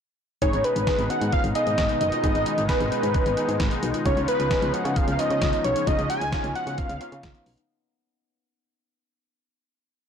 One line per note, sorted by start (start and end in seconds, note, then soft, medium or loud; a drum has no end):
0.42 0.52 G#1 loud
0.42 4.02 B2 medium
0.42 4.02 D#3 medium
0.42 7.65 G#3 medium
0.42 0.76 B3 medium
0.42 0.76 D#4 medium
0.42 0.62 D#4 medium
0.42 7.65 D#4 medium
0.42 0.76 G#4 medium
0.42 0.66 C#5 loud
0.42 kick loud
0.42 closed hi-hat medium
0.53 0.64 G#1 loud
0.53 closed hi-hat soft
0.64 0.75 C#4 medium
0.64 1.11 B4 loud
0.64 closed hi-hat medium
0.76 0.86 G#1 medium
0.76 0.96 D#4 medium
0.76 closed hi-hat medium
0.87 1.39 B3 medium
0.87 1.39 D#4 medium
0.87 1.39 G#4 medium
0.87 kick loud
0.87 snare loud
0.87 closed hi-hat medium
0.99 1.09 G#1 medium
0.99 1.09 B3 medium
0.99 closed hi-hat medium
1.10 1.20 C#4 medium
1.10 1.32 F#5 loud
1.10 closed hi-hat medium
1.21 1.32 G#2 medium
1.21 1.31 B3 medium
1.21 closed hi-hat medium
1.32 1.43 C#4 medium
1.32 1.43 F5 loud
1.32 kick loud
1.32 closed hi-hat medium
1.44 1.54 G#1 loud
1.44 1.64 B3 medium
1.44 closed hi-hat medium
1.55 2.07 B3 medium
1.55 2.07 D#4 medium
1.55 2.07 G#4 medium
1.55 1.98 D#5 loud
1.55 closed hi-hat medium
1.67 1.77 G#2 medium
1.67 1.87 A#3 medium
1.67 closed hi-hat soft
1.78 1.88 G#1 loud
1.78 kick loud
1.78 snare loud
1.78 closed hi-hat medium
1.89 2.00 B3 medium
1.89 closed hi-hat soft
2.01 2.11 F#1 medium
2.01 2.11 D#4 medium
2.01 2.22 D#5 loud
2.01 closed hi-hat medium
2.12 2.22 F4 medium
2.12 closed hi-hat medium
2.23 2.34 G#1 loud
2.23 2.58 B3 medium
2.23 2.58 D#4 medium
2.23 2.44 D#4 loud
2.23 2.58 G#4 medium
2.23 2.66 D#5 loud
2.23 kick loud
2.23 closed hi-hat medium
2.35 2.45 G#1 loud
2.35 closed hi-hat medium
2.46 2.56 C#4 medium
2.46 closed hi-hat medium
2.58 2.68 G#1 medium
2.58 2.78 D#4 medium
2.58 closed hi-hat medium
2.69 3.21 B3 medium
2.69 3.21 D#4 medium
2.69 3.21 G#4 medium
2.69 2.79 B4 medium
2.69 kick loud
2.69 snare loud
2.69 closed hi-hat medium
2.80 2.91 G#1 loud
2.80 2.91 B3 medium
2.80 closed hi-hat medium
2.92 3.02 C#4 medium
2.92 3.79 B4 medium
2.92 closed hi-hat medium
3.03 3.13 G#2 loud
3.03 3.13 B3 medium
3.03 closed hi-hat medium
3.14 3.25 C#4 medium
3.14 kick loud
3.14 closed hi-hat medium
3.26 3.36 G#1 loud
3.26 3.46 B3 medium
3.26 closed hi-hat medium
3.37 3.89 B3 medium
3.37 3.89 D#4 medium
3.37 3.89 G#4 medium
3.37 closed hi-hat medium
3.49 3.59 G#2 loud
3.49 3.69 A#3 medium
3.49 closed hi-hat soft
3.60 3.70 G#1 loud
3.60 kick loud
3.60 snare loud
3.60 closed hi-hat medium
3.71 3.81 B3 medium
3.71 closed hi-hat soft
3.83 3.93 B1 loud
3.83 3.93 D#4 medium
3.83 closed hi-hat medium
3.94 4.04 F4 medium
3.94 closed hi-hat medium
4.05 4.16 C#2 loud
4.05 4.40 C#4 medium
4.05 4.26 D#4 loud
4.05 4.40 D#4 medium
4.05 4.40 F4 medium
4.05 4.27 C#5 medium
4.05 kick loud
4.05 closed hi-hat medium
4.17 4.27 C#2 loud
4.17 closed hi-hat soft
4.28 4.38 C#4 medium
4.28 4.75 B4 medium
4.28 closed hi-hat medium
4.39 4.50 C#2 loud
4.39 4.60 D#4 medium
4.39 closed hi-hat medium
4.51 5.03 C#4 medium
4.51 5.03 D#4 medium
4.51 5.03 G#4 medium
4.51 kick loud
4.51 snare loud
4.51 closed hi-hat medium
4.62 4.72 C#2 loud
4.62 4.72 B3 medium
4.62 closed hi-hat medium
4.74 4.84 C#4 medium
4.74 4.98 F#5 medium
4.74 closed hi-hat medium
4.85 4.95 C#3 loud
4.85 closed hi-hat medium
4.96 5.06 C#4 medium
4.96 5.11 F5 loud
4.96 kick loud
4.96 closed hi-hat medium
5.08 5.18 C#2 loud
5.08 5.28 B3 medium
5.08 closed hi-hat medium
5.12 5.21 F5 medium
5.19 5.71 C#4 medium
5.19 5.71 D#4 medium
5.19 5.71 F4 medium
5.19 5.64 D#5 loud
5.19 closed hi-hat medium
5.30 5.41 C#3 loud
5.30 5.51 A#3 medium
5.30 closed hi-hat soft
5.42 5.52 C#2 loud
5.42 kick loud
5.42 snare loud
5.42 closed hi-hat medium
5.53 5.63 B3 medium
5.53 closed hi-hat soft
5.64 5.75 B1 loud
5.64 5.75 C#4 medium
5.64 5.89 C#5 medium
5.64 closed hi-hat medium
5.76 5.86 D#4 medium
5.76 closed hi-hat medium
5.87 5.98 C#2 loud
5.87 6.22 C#4 medium
5.87 6.22 D#4 medium
5.87 6.08 D#4 loud
5.87 6.22 F4 medium
5.87 6.09 D#5 loud
5.87 kick loud
5.87 closed hi-hat medium
5.99 6.09 C#2 loud
5.99 closed hi-hat soft
6.10 6.20 C#4 medium
6.10 6.52 G#5 loud
6.10 closed hi-hat medium
6.21 6.32 C#2 loud
6.21 closed hi-hat medium
6.32 6.85 C#4 medium
6.32 6.85 D#4 medium
6.32 6.85 F4 medium
6.32 kick loud
6.32 snare loud
6.32 closed hi-hat medium
6.44 6.54 C#2 loud
6.44 6.54 B3 medium
6.44 closed hi-hat medium
6.55 6.66 C#4 medium
6.55 6.80 F#5 loud
6.55 closed hi-hat medium
6.67 6.77 C#3 loud
6.67 6.77 B3 medium
6.67 closed hi-hat medium
6.78 6.88 C#4 medium
6.78 7.46 F5 loud
6.78 kick loud
6.78 closed hi-hat medium
6.89 7.00 C#2 loud
6.89 7.10 B3 medium
6.89 closed hi-hat medium
7.01 7.53 C#4 medium
7.01 7.53 D#4 medium
7.01 7.53 F4 medium
7.01 closed hi-hat medium
7.12 7.22 C#3 loud
7.12 7.33 A#3 medium
7.12 closed hi-hat soft
7.23 7.34 C#2 loud
7.23 kick loud
7.23 snare loud
7.23 closed hi-hat medium
7.35 7.45 B3 medium
7.35 closed hi-hat soft
7.46 7.57 B1 medium
7.46 7.57 C#4 medium
7.46 open hi-hat medium
7.58 7.68 D#4 medium
7.58 closed hi-hat medium